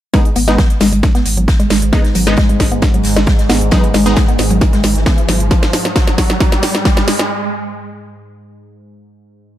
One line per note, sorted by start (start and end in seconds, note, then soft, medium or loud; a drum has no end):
0.14 5.56 G#2 medium
0.14 0.19 G#3 medium
0.14 0.26 G#3 medium
0.14 5.56 G#3 medium
0.14 0.26 B3 medium
0.14 0.26 D#4 loud
0.14 kick loud
0.14 snare soft
0.14 closed hi-hat medium
0.14 riser medium
0.25 closed hi-hat medium
0.36 0.47 G#1 loud
0.36 0.42 B3 loud
0.36 closed hi-hat medium
0.36 open hi-hat loud
0.48 0.58 G#1 medium
0.48 0.59 G#3 loud
0.48 0.59 B3 medium
0.48 0.59 D#4 loud
0.48 snare soft
0.48 closed hi-hat medium
0.58 0.67 F#3 medium
0.58 kick loud
0.58 snare loud
0.58 closed hi-hat medium
0.70 closed hi-hat medium
0.80 0.92 G#1 loud
0.80 0.84 G#3 loud
0.80 snare medium
0.80 closed hi-hat medium
0.80 open hi-hat loud
0.92 1.03 G#1 medium
0.92 0.98 G#3 medium
0.92 closed hi-hat soft
0.92 closed hi-hat medium
1.03 kick loud
1.03 snare medium
1.03 closed hi-hat medium
1.14 1.20 B3 loud
1.14 snare soft
1.14 closed hi-hat medium
1.26 1.37 G#1 medium
1.26 closed hi-hat medium
1.26 open hi-hat loud
1.37 1.48 G#1 medium
1.37 1.45 F#3 medium
1.37 closed hi-hat medium
1.48 kick loud
1.48 snare loud
1.48 closed hi-hat medium
1.60 1.63 G#3 loud
1.60 closed hi-hat medium
1.70 1.81 G#1 medium
1.70 1.76 G#3 medium
1.70 snare medium
1.70 closed hi-hat medium
1.70 open hi-hat loud
1.82 1.92 G#1 medium
1.82 closed hi-hat medium
1.93 2.05 G#3 medium
1.93 2.05 B3 medium
1.93 1.98 B3 loud
1.93 2.05 D#4 loud
1.93 kick loud
1.93 snare medium
1.93 closed hi-hat medium
2.04 snare soft
2.04 closed hi-hat medium
2.15 2.26 G#1 loud
2.15 2.23 F#3 medium
2.15 closed hi-hat medium
2.15 open hi-hat loud
2.27 2.37 G#1 medium
2.27 2.38 G#3 loud
2.27 2.38 B3 medium
2.27 2.38 D#4 loud
2.27 snare medium
2.27 closed hi-hat medium
2.37 2.41 G#3 loud
2.37 kick loud
2.37 snare loud
2.37 closed hi-hat medium
2.49 2.54 G#3 medium
2.49 closed hi-hat medium
2.60 2.71 G#1 loud
2.60 kick medium
2.60 snare medium
2.60 closed hi-hat medium
2.60 open hi-hat loud
2.72 2.82 G#1 medium
2.72 2.77 B3 loud
2.72 closed hi-hat medium
2.82 kick loud
2.82 snare medium
2.82 closed hi-hat medium
2.94 3.02 F#3 medium
2.94 closed hi-hat medium
3.03 3.16 G#1 medium
3.03 snare medium
3.03 closed hi-hat medium
3.03 open hi-hat loud
3.16 3.27 G#1 medium
3.16 3.19 G#3 loud
3.16 snare medium
3.16 snare soft
3.16 closed hi-hat medium
3.27 3.33 G#3 medium
3.27 kick loud
3.27 snare loud
3.27 closed hi-hat medium
3.39 snare medium
3.39 closed hi-hat medium
3.49 3.61 G#1 loud
3.49 3.55 B3 loud
3.49 snare medium
3.49 closed hi-hat medium
3.49 open hi-hat loud
3.61 3.72 G#1 medium
3.61 closed hi-hat medium
3.71 3.80 F#3 medium
3.71 3.84 G#3 loud
3.71 3.84 B3 medium
3.71 3.84 D#4 loud
3.71 kick loud
3.71 snare medium
3.71 closed hi-hat loud
3.71 closed hi-hat medium
3.84 closed hi-hat medium
3.94 4.05 G#1 loud
3.94 3.97 G#3 loud
3.94 snare medium
3.94 closed hi-hat medium
3.94 open hi-hat loud
4.05 4.16 G#1 medium
4.05 4.17 G#3 loud
4.05 4.11 G#3 medium
4.05 4.17 B3 medium
4.05 4.17 D#4 loud
4.05 snare soft
4.05 closed hi-hat medium
4.16 kick loud
4.16 snare loud
4.16 snare medium
4.16 closed hi-hat loud
4.16 closed hi-hat medium
4.28 4.33 B3 loud
4.28 closed hi-hat medium
4.38 4.50 G#1 loud
4.38 snare medium
4.38 closed hi-hat medium
4.38 open hi-hat loud
4.50 4.61 G#1 medium
4.50 4.58 F#3 medium
4.50 closed hi-hat soft
4.50 closed hi-hat medium
4.61 kick loud
4.61 snare medium
4.61 closed hi-hat medium
4.73 4.76 G#3 loud
4.73 snare soft
4.73 closed hi-hat medium
4.83 4.95 G#1 medium
4.83 4.89 G#3 medium
4.83 snare medium
4.83 closed hi-hat medium
4.83 open hi-hat loud
4.96 5.06 G#1 medium
4.96 snare soft
4.96 closed hi-hat medium
5.06 5.12 B3 loud
5.06 kick loud
5.06 snare loud
5.06 snare medium
5.06 closed hi-hat medium
5.18 closed hi-hat medium
5.28 5.40 G#1 loud
5.28 5.37 F#3 medium
5.28 snare medium
5.28 closed hi-hat medium
5.28 open hi-hat loud
5.40 5.51 G#1 medium
5.40 closed hi-hat medium
5.51 kick loud
5.51 snare medium
5.51 closed hi-hat medium
5.62 snare medium
5.62 closed hi-hat medium
5.73 snare loud
5.73 closed hi-hat medium
5.73 open hi-hat loud
5.85 snare medium
5.85 closed hi-hat medium
5.95 kick loud
5.95 snare loud
5.95 closed hi-hat medium
6.08 snare medium
6.08 closed hi-hat medium
6.18 kick medium
6.18 snare loud
6.18 closed hi-hat medium
6.18 open hi-hat loud
6.30 snare medium
6.30 closed hi-hat medium
6.40 kick loud
6.40 snare loud
6.40 closed hi-hat medium
6.52 snare loud
6.52 closed hi-hat medium
6.62 snare medium
6.62 snare loud
6.62 closed hi-hat medium
6.62 open hi-hat loud
6.74 snare soft
6.74 snare medium
6.74 closed hi-hat medium
6.85 kick loud
6.85 snare loud
6.85 closed hi-hat medium
6.97 snare loud
6.97 snare medium
6.97 closed hi-hat medium
7.08 snare loud
7.08 closed hi-hat medium
7.08 open hi-hat loud
7.19 snare loud
7.19 closed hi-hat medium